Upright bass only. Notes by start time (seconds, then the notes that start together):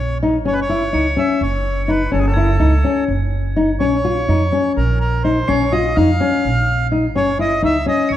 Already playing: A#1
0.46 F#1
0.94 C#2
1.41 F#1
2.12 F#1
2.60 C#2
3.08 F#1
3.80 A#1
4.28 F2
4.77 A#1
5.49 A#1
5.97 F2
6.45 A#1
7.16 F#1
7.63 C#2
8.10 F#1